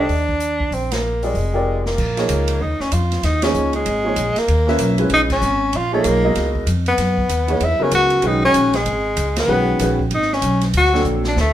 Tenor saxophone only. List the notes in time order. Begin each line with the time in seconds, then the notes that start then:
0.00 D4
0.73 C4
0.93 A#3
1.24 G#3
1.87 A#3
2.62 D#4
2.81 C#4
2.93 F4
3.25 D#4
3.44 C#4
3.75 G#3
4.38 A#3
5.14 D#4
5.32 C#4
5.76 F4
5.94 A#3
6.88 B3
7.65 E4
7.83 C#4
7.95 F#4
8.27 D#4
8.45 C#4
8.76 G#3
9.39 B3
10.14 D#4
10.34 C#4
10.77 F#4
11.28 D4
11.40 A3